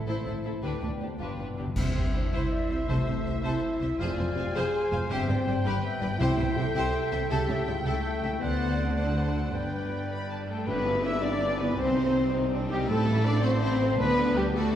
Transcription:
Already playing: A2 D3 C4 E4 C5
0.07 A1 A2 E3 E4 A4 C5 E5
0.25 A1 A2 E4 A4 C5
0.44 A1 A2 E4 A4 C5
0.62 D2 D3 B3 D4 G4 B4 G5
0.80 D2 D4 G4 B4 D5
1.00 D2 D4 G4 B4 C5
1.17 G1 G2 B3 D4 F4 B4 G5
1.28 G2
1.36 G1 G2 D4 F4 B4
1.40 G2 D4
1.51 G2
1.57 G1 G2 D4 F4 G4 B4
1.67 G2
1.76 C2 C3 C4 E4 C5 E5, concert bass drum, crash
1.87 G3
1.95 C2 C3 C4 G4 C5
2.05 E4
2.13 C2 C3 D4 C5
2.23 E4
2.31 C2 C3 E4 C5 E5
2.42 C6
2.52 D5 E5
2.60 C5
2.69 C2 C3 E4 C5
2.79 C4
2.88 C2 C3 A3 A4 C5
2.97 A3
3.06 C2 C3 C4 C5
3.15 E4
3.24 C2 C3 C5 E5
3.35 E4
3.43 C2 C3 E4 A4 C5 E5
3.53 C6
3.62 C5 E5
3.72 C5
3.81 C2 C3 E4 C5 E5
3.90 C4
3.99 F1 F2 F4 G#4 C5 D5 F5 G#5
4.09 C3
4.18 F1 F2 C4 C5
4.27 F4
4.35 F1 F2 G4 C5 F5
4.46 F4
4.55 F1 F2 G#4 C5 F5
4.65 C6
4.74 F5
4.83 C5
4.92 F1 F2 F4 C5 F5
5.01 C4
5.10 G1 G2 C4 G4 C5 E5 G5
5.19 D3
5.28 G1 G2 C4 C5 D5
5.37 D4
5.46 G1 G2 G4 C5 D5
5.55 C5
5.64 G1 G2 G4 B4
5.73 D3
5.83 B3 E5
5.92 D4
6.01 G1 G2 G4 B4 D5
6.10 B4
6.19 C2 C3 E4 G4 C5 E5 G5
6.29 G3
6.38 C2 C3 C4 C5
6.48 E4
6.56 C2 C3 G4 A4 C5 E5
6.66 C5
6.75 C2 C3 G4 C5 E5
6.85 G5
6.93 E5
7.02 G4
7.12 C2 C3 E4 C5 E5
7.20 C4
7.29 C#2 C#3 G4 A4 E5 G5
7.39 G3
7.48 C#2 C#3 A3 A4 C#5
7.58 E4
7.67 C#2 C#3 F4 G4 A4 E5
7.77 A4
7.84 C#2 C#3 A3 A4 E5 G5
7.96 G5
8.05 E5
8.14 G4
8.22 C#2 C#3 E4 A4 E5
8.32 A3
8.39 D2 D3 B3 C5 D5 F#5
8.43 F#5
8.50 A3
8.60 D4
8.70 F#4
8.77 C4 A4
8.88 D5
8.96 D4 A4 C5 D5 F#5
9.07 A5
9.16 B4 F#5
9.25 A4
9.34 F#4 A4
9.45 D4
9.53 G1 G2 B3 B4 D5 G5
9.63 D3
9.73 G3
9.82 D4
9.91 G4
10.01 D4
10.11 D5 B5
10.21 G5
10.30 D5 A5
10.39 G4
10.48 A3 D4 A4 G5 A5
10.58 G3
10.67 G1 G2 D3 B3 D4 B4 B5, tam-tam
10.77 G3
10.86 E3 E4
10.95 G4
11.04 D3 D4 E4 E5 E6
11.13 E5
11.22 E3 B3 D4 E4 D5 G5 D6
11.32 G4
11.41 D3 D4 E4
11.51 G3
11.59 D3 E3 B3 E4 B4 B5
11.69 G3
11.77 C2 C3 G3 C4 C5 C6
11.87 G3
11.96 D#3 D#4
12.06 G4
12.15 G3 B3 C4 D#4
12.24 D#5
12.33 D#3 C4 D#4 G5
12.43 G4
12.51 G3 C4 D4 D#4
12.62 G3
12.69 D#3 G3 C4 D#4 G4 G5
12.81 G3
12.87 A1 A2 A3 C4 E4 A4 A5
12.98 C4
13.07 E3 A3 E4
13.17 A4
13.24 A3 C4 D4 C5 D5 D6
13.35 E5
13.42 E3 A3 C4 F#4 C5 A5 C6
13.54 C5
13.61 A3 C4 E4 A4
13.81 E3 A3 C4
13.90 E3
13.99 D2 D3 B3 D4 B4 B5
14.18 G3 B3 G4
14.36 G3 B3 D4 G4 G5
14.47 G5
14.55 D3 A3 D4 F#4 A4 A5
14.65 D4

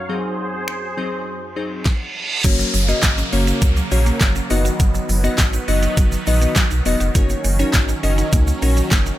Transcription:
Already playing: F#2 F#3
0.09 F#3 C4 D#4 G#4 C5
0.68 finger snap
0.97 F#3 C4 D#4 G#4 C5
1.27 reverse cymbal
1.56 F#3 C4 D#4 G#4 C5
1.85 kick, snare
2.44 F#1 C#3 F#3 A#3 C#4 F#4 A#4 C#5, kick, closed hi-hat, crash, downlifter, shaker
2.59 F#3, shaker
2.74 F#1 F#3, open hi-hat, shaker
2.88 A#3 C#4 F#4 A#4 D#5, shaker
3.03 G#1, kick, snare, clap, closed hi-hat, shaker
3.18 C#4, shaker
3.32 F#1 A#3 C#4 F#4 A#4 C#5, open hi-hat, shaker
3.47 C#4, shaker
3.62 C#2 F#3, kick, closed hi-hat, shaker
3.77 F#3, shaker
3.91 A#1 F#3 A#3 C#4 F#4 A#4 C#5, open hi-hat, shaker
4.06 A#3, shaker
4.21 F#1 F#3, kick, snare, clap, closed hi-hat, shaker
4.36 C#4, shaker
4.50 F#1 D#3 B3 D#4 F#4 B4 D#5, open hi-hat, shaker
4.65 F#4, shaker
4.79 F#1 F#3, kick, closed hi-hat, shaker
4.94 F#3, shaker
5.09 F#1 F#3, open hi-hat, shaker
5.24 B3 D#4 F#4 B4 D#5, shaker
5.38 G#1, kick, snare, clap, closed hi-hat, shaker
5.53 D#4, shaker
5.68 F#1 B3 D#4 F#4 B4 D#5, open hi-hat, shaker
5.83 D#4, shaker
5.97 F#1 F#3, kick, closed hi-hat, shaker
6.12 F#3, shaker
6.27 A#1 F#3 B3 D#4 F#4 B4 D#5, open hi-hat, shaker
6.41 B3, shaker
6.56 F#3, kick, snare, clap, closed hi-hat, shaker
6.71 B1 D#4, shaker
6.85 E1 B3 D#4 F#4 B4 D#5, open hi-hat, shaker
7.00 F1 F#4, shaker
7.15 F#1 F#3 A#3 C#4 D#4 F#4 A#4 C#5, kick, closed hi-hat, shaker
7.29 A#3, shaker
7.44 F#1 A#3, open hi-hat, shaker
7.59 C#4 D#4 F#4 A#4 C#5, shaker
7.73 G#1, kick, snare, clap, closed hi-hat, shaker
7.89 D#4, shaker
8.03 F#1 C#4 D#4 F#4 A#4 D#5, open hi-hat, shaker
8.18 D#4, shaker
8.32 C#2 A#3, kick, closed hi-hat, shaker
8.47 A#3, shaker
8.62 A#1 A#3 C#4 D#4 F#4 A#4 C#5, open hi-hat, shaker
8.77 C#4, shaker
8.91 F#1 A#3, kick, snare, clap, closed hi-hat, shaker
9.06 D#4, shaker

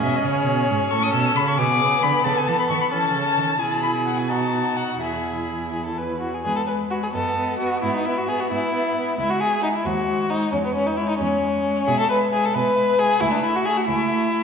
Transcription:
Already playing: C#4 G#4
0.03 B2 E5
0.16 D#5
0.24 C#3 G#4 C#5
0.47 B2
0.70 G#2
0.91 A2 C#4 A4 C#6
1.03 D#6
1.13 B2 E6
1.36 C#3 B5
1.47 C#6
1.58 B2 B3 G#4 D6
1.81 C#3
2.03 D3 B5
2.24 C#3 A4 A5
2.37 G#5
2.47 E3 A5
2.59 B5
2.70 D#3 C#6
2.81 B5
2.91 E3 C#4 A4 A5
3.14 C#3
3.37 D#3
3.59 B2 E4 G#4 G#5
3.72 A5
3.83 B5
4.06 F#5
4.18 G#5
4.29 D#4 F#4 A5
4.77 F#5
5.01 E2 E4 G#4 E5
5.73 G#4
5.86 A4
5.97 B4
6.21 F#4
6.34 G#4
6.44 E2 G#3 G#4 B4
6.56 A4
6.67 G#3 B4
6.90 G#3 F#4 B4
7.03 G#4
7.13 F#2 B3 A4 D#5
7.36 B3 D#5
7.59 B3 F#4 D#5
7.82 G#2 B3 E4 E5
7.95 D#4
8.05 B3 E4 E5
8.17 F#4
8.28 B3 G#4 E5
8.40 F#4
8.51 G#2 B3 E4 E5
8.73 B3 E5
8.96 B3 E5
9.18 C#2 G#3 E4 E5
9.29 F#4
9.40 G#3 G#4 E5
9.62 G#3 D#4 E5
9.75 E4
9.85 D#2 G#3 F#4 C5
10.07 G#3 C5
10.29 G#3 D#4 C5
10.51 E2 G#3 C#4 C#5
10.64 B3
10.74 G#3 C#4 C#5
10.86 D#4
10.96 G#3 E4 C#5
11.09 D#4
11.19 E2 G#3 C#4 C#5
11.42 G#3 C#5
11.65 G#3 C#5
11.87 B2 G#3 G#4 E5
12.00 A4
12.09 G#3 B4 E5
12.32 G#3 G#4 E5
12.45 A4
12.54 B2 G#3 B4 E5
12.77 G#3 E5
12.98 G#3 G#4 E5
13.20 C#2 A3 E4 E5
13.32 D4
13.43 A3 E4 E5
13.55 F#4
13.65 A3 G#4 E5
13.77 F#4
13.87 C#2 A3 E4 E5
14.10 A3 E5
14.32 A3 E5

